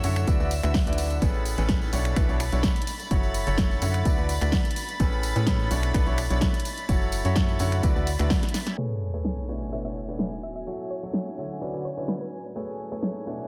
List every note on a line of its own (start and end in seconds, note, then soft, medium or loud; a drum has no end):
0.00 0.25 F#2 loud
0.00 0.25 D3 medium
0.00 0.25 E4 medium
0.00 0.25 F#4 medium
0.00 0.25 A4 medium
0.00 0.25 C#5 medium
0.00 1.23 E5 medium
0.00 1.23 E6 medium
0.00 open hi-hat loud
0.00 tambourine medium
0.16 finger snap medium
0.16 closed hi-hat soft
0.16 tambourine soft
0.27 0.37 D2 medium
0.27 0.37 D3 medium
0.27 0.37 E4 medium
0.27 0.37 F#4 medium
0.27 0.37 B4 medium
0.27 0.37 D5 loud
0.27 kick loud
0.27 closed hi-hat medium
0.27 tambourine medium
0.40 0.61 D2 medium
0.40 0.51 D3 medium
0.40 0.51 E4 medium
0.40 0.51 F#4 medium
0.40 0.51 B4 medium
0.40 0.51 D5 medium
0.40 tambourine soft
0.51 open hi-hat loud
0.51 tambourine medium
0.63 0.85 D2 loud
0.63 0.74 D3 loud
0.63 0.74 E4 medium
0.63 0.74 F#4 medium
0.63 0.74 B4 medium
0.63 0.74 E5 loud
0.63 finger snap medium
0.63 closed hi-hat soft
0.63 tambourine soft
0.74 kick loud
0.74 snare loud
0.74 open hi-hat medium
0.74 tambourine medium
0.87 1.20 D2 medium
0.87 1.19 D3 medium
0.87 1.19 E4 medium
0.87 1.19 F#4 medium
0.87 1.19 B4 medium
0.87 1.19 D5 medium
0.87 closed hi-hat soft
0.87 tambourine soft
0.93 closed hi-hat medium
0.98 open hi-hat loud
0.98 tambourine medium
1.10 closed hi-hat soft
1.10 tambourine soft
1.22 1.55 A1 loud
1.22 1.55 A2 medium
1.22 1.55 C#4 medium
1.22 1.55 G#4 medium
1.22 1.55 A4 medium
1.22 1.55 B4 medium
1.22 8.79 B5 medium
1.22 8.79 A6 medium
1.22 kick loud
1.22 closed hi-hat medium
1.22 tambourine soft
1.34 tambourine soft
1.46 open hi-hat loud
1.46 tambourine medium
1.58 1.91 A1 medium
1.58 1.90 A2 medium
1.58 1.90 C#4 medium
1.58 1.90 G#4 medium
1.58 1.90 A4 medium
1.58 1.90 B4 medium
1.58 closed hi-hat soft
1.58 tambourine soft
1.69 kick loud
1.69 snare loud
1.69 closed hi-hat medium
1.69 tambourine soft
1.81 tambourine soft
1.93 2.14 B1 medium
1.93 2.14 B2 medium
1.93 2.14 D4 medium
1.93 2.14 E4 medium
1.93 2.14 A4 medium
1.93 2.14 C#5 medium
1.93 open hi-hat loud
1.93 tambourine medium
2.05 finger snap medium
2.05 closed hi-hat soft
2.05 tambourine soft
2.16 2.26 B1 medium
2.16 2.26 B2 medium
2.16 2.26 D4 medium
2.16 2.26 E4 medium
2.16 2.26 A4 medium
2.16 2.26 B4 loud
2.16 finger snap medium
2.16 kick loud
2.16 closed hi-hat medium
2.16 tambourine soft
2.29 2.50 B1 loud
2.29 2.40 B2 medium
2.29 2.40 D4 medium
2.29 2.40 E4 medium
2.29 2.40 A4 medium
2.29 2.40 C#5 medium
2.29 tambourine soft
2.40 finger snap medium
2.40 open hi-hat loud
2.40 tambourine loud
2.52 2.68 B1 loud
2.52 2.70 B2 medium
2.52 2.70 D4 medium
2.52 2.70 E4 medium
2.52 2.70 A4 medium
2.52 2.70 C#5 medium
2.52 closed hi-hat soft
2.52 tambourine soft
2.63 kick loud
2.63 snare loud
2.63 closed hi-hat medium
2.63 tambourine medium
2.76 closed hi-hat soft
2.76 tambourine soft
2.82 closed hi-hat medium
2.87 open hi-hat loud
2.87 tambourine medium
3.00 closed hi-hat medium
3.00 tambourine soft
3.11 3.44 F#1 loud
3.11 3.44 F#3 medium
3.11 3.44 E4 medium
3.11 3.44 F#4 medium
3.11 3.44 A4 medium
3.11 3.44 C#5 medium
3.11 kick loud
3.11 closed hi-hat medium
3.11 tambourine medium
3.23 tambourine soft
3.34 open hi-hat loud
3.34 tambourine loud
3.47 3.80 F#1 loud
3.47 3.79 F#3 medium
3.47 3.79 E4 medium
3.47 3.79 F#4 medium
3.47 3.79 A4 medium
3.47 3.79 C#5 medium
3.47 closed hi-hat medium
3.47 tambourine soft
3.58 kick loud
3.58 snare loud
3.58 closed hi-hat medium
3.58 tambourine medium
3.71 tambourine soft
3.82 4.03 F#2 loud
3.82 4.03 D3 medium
3.82 4.03 E4 medium
3.82 4.03 F#4 medium
3.82 4.03 A4 medium
3.82 4.03 C#5 medium
3.82 open hi-hat loud
3.82 tambourine loud
3.94 finger snap medium
3.94 closed hi-hat medium
3.94 tambourine soft
4.05 4.15 D2 medium
4.05 4.15 D3 medium
4.05 4.15 E4 medium
4.05 4.15 F#4 medium
4.05 4.15 B4 medium
4.05 4.15 D5 loud
4.05 kick loud
4.05 closed hi-hat medium
4.05 tambourine medium
4.18 4.39 D2 medium
4.18 4.29 D3 medium
4.18 4.29 E4 medium
4.18 4.29 F#4 medium
4.18 4.29 B4 medium
4.18 4.29 D5 medium
4.18 tambourine soft
4.29 open hi-hat loud
4.29 tambourine medium
4.41 4.57 D2 medium
4.41 4.59 D3 medium
4.41 4.59 E4 medium
4.41 4.59 F#4 medium
4.41 4.59 B4 medium
4.41 4.59 D5 medium
4.41 finger snap medium
4.41 closed hi-hat medium
4.41 tambourine soft
4.52 kick loud
4.52 snare loud
4.52 open hi-hat medium
4.52 tambourine medium
4.65 closed hi-hat soft
4.65 tambourine soft
4.71 closed hi-hat medium
4.76 open hi-hat loud
4.76 tambourine medium
4.89 closed hi-hat medium
4.89 tambourine soft
5.00 5.33 A1 loud
5.00 5.33 A2 medium
5.00 5.33 C#4 medium
5.00 5.33 G#4 medium
5.00 5.33 A4 medium
5.00 5.33 B4 medium
5.00 kick loud
5.00 closed hi-hat medium
5.00 tambourine medium
5.12 tambourine soft
5.23 open hi-hat medium
5.23 tambourine medium
5.36 5.68 A2 medium
5.36 5.69 A2 loud
5.36 5.68 C#4 medium
5.36 5.68 G#4 medium
5.36 5.68 A4 medium
5.36 5.68 B4 medium
5.36 closed hi-hat medium
5.36 tambourine soft
5.47 kick loud
5.47 snare loud
5.47 closed hi-hat medium
5.47 tambourine soft
5.59 tambourine soft
5.71 5.92 B1 loud
5.71 5.92 B2 medium
5.71 5.92 D4 medium
5.71 5.92 E4 medium
5.71 5.92 A4 medium
5.71 5.92 C#5 medium
5.71 open hi-hat loud
5.71 tambourine medium
5.83 finger snap medium
5.83 closed hi-hat medium
5.83 tambourine soft
5.94 6.04 B1 medium
5.94 6.04 B2 medium
5.94 6.04 D4 medium
5.94 6.04 E4 medium
5.94 6.04 A4 medium
5.94 6.04 B4 loud
5.94 finger snap medium
5.94 kick loud
5.94 closed hi-hat medium
5.94 tambourine soft
6.06 6.28 B1 medium
6.06 6.18 B2 medium
6.06 6.18 D4 medium
6.06 6.18 E4 medium
6.06 6.18 A4 medium
6.06 6.18 C#5 medium
6.06 tambourine soft
6.18 finger snap medium
6.18 open hi-hat loud
6.18 tambourine medium
6.30 6.46 B1 medium
6.30 6.48 B2 medium
6.30 6.48 D4 medium
6.30 6.48 E4 medium
6.30 6.48 A4 medium
6.30 6.48 C#5 medium
6.30 closed hi-hat medium
6.30 tambourine soft
6.41 kick loud
6.41 snare loud
6.41 closed hi-hat medium
6.41 tambourine soft
6.54 closed hi-hat medium
6.54 tambourine soft
6.60 closed hi-hat medium
6.65 open hi-hat loud
6.65 tambourine medium
6.77 closed hi-hat medium
6.77 tambourine soft
6.89 7.22 F#1 loud
6.89 7.22 F#3 medium
6.89 7.22 E4 medium
6.89 7.22 F#4 medium
6.89 7.22 A4 medium
6.89 7.22 C#5 medium
6.89 kick loud
6.89 closed hi-hat medium
6.89 tambourine soft
7.02 tambourine soft
7.12 open hi-hat loud
7.12 tambourine medium
7.25 7.58 F#2 loud
7.25 7.57 F#3 medium
7.25 7.57 E4 medium
7.25 7.57 F#4 medium
7.25 7.57 A4 medium
7.25 7.57 C#5 medium
7.25 closed hi-hat medium
7.25 tambourine soft
7.36 kick loud
7.36 snare loud
7.36 closed hi-hat medium
7.36 tambourine soft
7.49 tambourine soft
7.59 7.81 F#2 loud
7.59 7.81 D3 medium
7.59 7.81 E4 medium
7.59 7.81 F#4 medium
7.59 7.81 A4 medium
7.59 7.81 C#5 medium
7.59 open hi-hat medium
7.59 tambourine medium
7.72 finger snap medium
7.72 closed hi-hat medium
7.72 tambourine soft
7.83 7.93 D2 medium
7.83 7.93 D3 medium
7.83 7.93 E4 medium
7.83 7.93 F#4 medium
7.83 7.93 B4 medium
7.83 7.93 D5 loud
7.83 kick loud
7.83 closed hi-hat medium
7.83 tambourine soft
7.96 8.17 D2 medium
7.96 8.07 D3 medium
7.96 8.07 E4 medium
7.96 8.07 F#4 medium
7.96 8.07 B4 medium
7.96 8.07 D5 medium
7.96 tambourine soft
8.07 open hi-hat loud
8.07 tambourine medium
8.19 8.35 D2 loud
8.19 8.37 D3 medium
8.19 8.37 E4 medium
8.19 8.37 F#4 medium
8.19 8.37 B4 medium
8.19 8.37 D5 medium
8.19 finger snap medium
8.19 closed hi-hat medium
8.19 tambourine soft
8.30 kick loud
8.30 snare loud
8.30 open hi-hat medium
8.30 tambourine soft
8.43 snare medium
8.43 closed hi-hat medium
8.43 tambourine soft
8.49 closed hi-hat medium
8.54 snare medium
8.54 open hi-hat loud
8.54 tambourine medium
8.66 snare medium
8.66 closed hi-hat medium
8.66 tambourine soft
8.78 9.11 A3 medium
8.78 9.11 G#4 medium
8.78 9.11 A4 medium
8.78 9.11 B4 medium
8.78 9.11 C#5 medium
8.78 13.48 G#5 medium
8.78 13.48 G#6 medium
8.78 closed hi-hat medium
8.78 sub drop medium
9.14 9.46 A3 medium
9.14 9.46 G#4 medium
9.14 9.46 A4 medium
9.14 9.46 B4 medium
9.14 9.46 C#5 medium
9.25 snare loud
9.49 9.70 B2 medium
9.49 10.90 B3 medium
9.49 9.70 D4 medium
9.49 9.70 E4 medium
9.49 9.70 A4 medium
9.49 9.70 B4 medium
9.49 9.70 C#5 medium
9.61 closed hi-hat medium
9.72 9.82 B2 medium
9.72 9.82 D4 medium
9.72 9.82 E4 medium
9.72 9.82 A4 medium
9.72 9.82 B4 medium
9.72 9.82 C#5 medium
9.72 9.80 E5 medium
9.85 9.96 B2 medium
9.85 9.96 D4 medium
9.85 9.96 E4 medium
9.85 9.96 A4 medium
9.85 9.96 B4 medium
9.85 9.96 C#5 medium
9.85 9.92 E5 medium
9.89 12.00 F#4 medium
9.89 12.00 C#5 medium
10.08 10.26 B2 medium
10.08 10.26 D4 medium
10.08 10.26 E4 medium
10.08 10.26 A4 medium
10.08 10.26 B4 medium
10.08 10.26 C#5 medium
10.19 snare loud
10.19 closed hi-hat medium
10.32 closed hi-hat soft
10.38 closed hi-hat medium
10.43 10.51 E5 medium
10.56 10.63 E5 medium
10.56 closed hi-hat medium
10.67 11.00 F#3 medium
10.67 11.00 E4 medium
10.67 11.00 F#4 medium
10.67 11.00 A4 medium
10.67 11.00 C#5 medium
10.67 closed hi-hat medium
10.90 11.09 C#5 medium
11.03 11.35 F#3 medium
11.03 11.35 E4 medium
11.03 11.35 F#4 medium
11.03 11.35 A4 medium
11.03 11.35 C#5 medium
11.03 closed hi-hat soft
11.13 snare loud
11.38 11.59 D3 medium
11.38 11.59 E4 medium
11.38 11.59 F#4 medium
11.38 11.59 A4 medium
11.38 11.59 C#5 medium
11.38 closed hi-hat soft
11.50 closed hi-hat medium
11.61 11.71 D3 medium
11.61 11.71 E4 medium
11.61 11.71 F#4 medium
11.61 11.71 B4 medium
11.61 11.71 D5 medium
11.61 closed hi-hat medium
11.74 11.85 D3 medium
11.74 13.48 A3 medium
11.74 11.85 E4 medium
11.74 11.85 F#4 medium
11.74 11.85 B4 medium
11.74 11.85 D5 medium
11.85 11.93 C#5 medium
11.97 12.15 D3 medium
11.97 12.15 E4 medium
11.97 12.15 F#4 medium
11.97 12.15 B4 medium
11.97 12.05 C#5 medium
11.97 12.15 D5 medium
11.97 closed hi-hat soft
12.04 13.48 E5 medium
12.04 snare loud
12.09 12.16 B4 medium
12.09 closed hi-hat medium
12.21 12.28 B4 medium
12.21 closed hi-hat soft
12.27 closed hi-hat medium
12.45 closed hi-hat soft
12.56 12.89 A3 medium
12.56 12.89 G#4 medium
12.56 12.89 A4 medium
12.56 12.89 B4 medium
12.56 12.89 C#5 medium
12.56 closed hi-hat medium
12.92 13.24 A3 medium
12.92 13.24 G#4 medium
12.92 13.24 A4 medium
12.92 13.24 B4 medium
12.92 13.24 C#5 medium
13.02 snare loud
13.27 13.48 B2 medium
13.27 13.48 B3 medium
13.27 13.48 D4 medium
13.27 13.48 E4 medium
13.27 13.48 A4 medium
13.27 13.48 B4 medium
13.27 13.48 C#5 medium
13.39 closed hi-hat soft